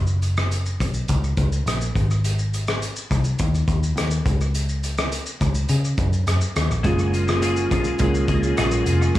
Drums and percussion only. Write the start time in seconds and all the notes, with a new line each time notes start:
0.07 shaker
0.22 closed hi-hat, shaker
0.37 cross-stick, shaker
0.52 closed hi-hat, shaker
0.66 shaker
0.80 kick, closed hi-hat, shaker
0.94 shaker
1.08 kick, closed hi-hat, shaker
1.24 shaker
1.37 kick, closed hi-hat, shaker
1.52 shaker
1.67 cross-stick, closed hi-hat, shaker
1.81 shaker
1.95 kick, closed hi-hat, shaker
2.11 shaker
2.24 closed hi-hat, shaker
2.39 shaker
2.54 closed hi-hat, shaker
2.67 cross-stick, shaker
2.82 closed hi-hat, shaker
2.96 shaker
3.11 kick, closed hi-hat, shaker
3.24 shaker
3.39 kick, closed hi-hat, shaker
3.55 shaker
3.68 kick, closed hi-hat, shaker
3.83 shaker
3.97 cross-stick, closed hi-hat, shaker
4.11 shaker
4.26 kick, closed hi-hat, shaker
4.41 shaker
4.55 closed hi-hat, shaker
4.69 shaker
4.83 closed hi-hat, shaker
4.98 cross-stick, shaker
5.12 closed hi-hat, shaker
5.26 shaker
5.41 kick, closed hi-hat, shaker
5.55 shaker
5.69 closed hi-hat, shaker
5.84 shaker
5.98 kick, closed hi-hat, shaker
6.13 shaker
6.27 cross-stick, closed hi-hat, shaker
6.41 shaker
6.56 cross-stick, closed hi-hat, shaker
6.71 shaker
6.84 kick, closed hi-hat, shaker
6.99 shaker
7.14 closed hi-hat, shaker
7.28 cross-stick, shaker
7.42 closed hi-hat, shaker
7.56 shaker
7.71 kick, closed hi-hat, shaker
7.84 shaker
7.99 kick, closed hi-hat, shaker
8.15 shaker
8.28 kick, closed hi-hat, shaker
8.43 shaker
8.57 cross-stick, closed hi-hat, shaker
8.71 shaker
8.86 closed hi-hat, shaker
9.02 shaker
9.15 kick, closed hi-hat, shaker